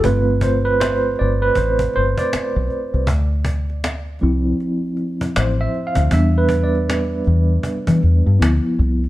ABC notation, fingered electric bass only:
X:1
M:4/4
L:1/16
Q:"Swing 16ths" 1/4=79
K:Ddor
V:1 name="Fingered electric bass" clef=bass
G,,,6 G,,,2 A,,,2 G,,, z2 B,,, z C,, | D,,6 C,,2 z4 A,,,2 z D,, | E,,6 E,,2 z E, E,, G,, D,, z C,,2 |]